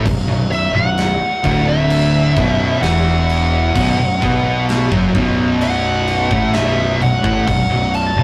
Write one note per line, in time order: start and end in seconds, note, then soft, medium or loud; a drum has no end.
0.04 0.27 B0 medium
0.04 0.25 B1 medium
0.04 kick loud
0.04 crash medium
0.26 0.71 B0 medium
0.26 0.64 B1 medium
0.51 0.74 E5 loud
0.51 crash medium
0.74 1.18 B0 medium
0.74 1.11 B1 medium
0.74 1.65 F#5 loud
0.98 snare loud
0.98 crash medium
1.43 2.33 D1 loud
1.43 2.35 D2 loud
1.43 2.35 D3 loud
1.43 kick loud
1.43 crash medium
1.68 2.80 E5 loud
1.90 crash loud
2.36 2.80 B0 loud
2.36 2.81 B1 medium
2.36 2.81 B2 loud
2.36 kick loud
2.36 crash medium
2.81 3.71 E1 medium
2.81 3.74 E2 medium
2.81 3.74 E3 loud
2.81 4.64 F#5 loud
2.81 snare loud
2.81 crash medium
3.29 crash medium
3.74 3.97 B0 medium
3.74 3.96 B1 loud
3.74 3.97 B2 loud
3.74 kick loud
3.74 crash loud
3.97 4.20 B0 medium
3.97 4.21 B1 medium
4.22 4.88 B1 loud
4.22 4.90 B2 loud
4.22 4.90 B3 loud
4.22 kick loud
4.22 crash medium
4.69 snare loud
4.69 crash medium
4.91 5.13 F#1 medium
4.91 5.13 F#2 medium
4.91 5.13 F#3 medium
4.91 kick loud
5.13 6.27 B0 medium
5.13 6.29 B1 loud
5.13 6.29 B2 loud
5.13 kick loud
5.13 crash medium
5.61 6.52 F#5 medium
5.61 crash medium
6.07 crash medium
6.31 6.52 A1 medium
6.31 6.53 A2 medium
6.31 6.53 A3 loud
6.31 kick loud
6.53 6.97 B0 medium
6.53 6.99 B1 loud
6.53 7.00 B2 loud
6.53 6.99 E5 loud
6.53 snare loud
6.53 crash medium
7.00 7.22 B0 medium
7.00 7.22 B1 medium
7.00 7.47 F#5 medium
7.00 crash medium
7.22 7.46 A1 loud
7.22 7.45 A2 medium
7.22 7.45 A3 loud
7.22 kick loud
7.47 7.69 B0 medium
7.47 7.68 B1 medium
7.47 7.93 F#5 loud
7.47 kick loud
7.47 crash medium
7.69 8.13 B0 medium
7.69 8.07 B1 medium
7.94 8.23 A5 medium
7.94 crash medium
8.16 8.23 B0 medium
8.16 8.23 B1 medium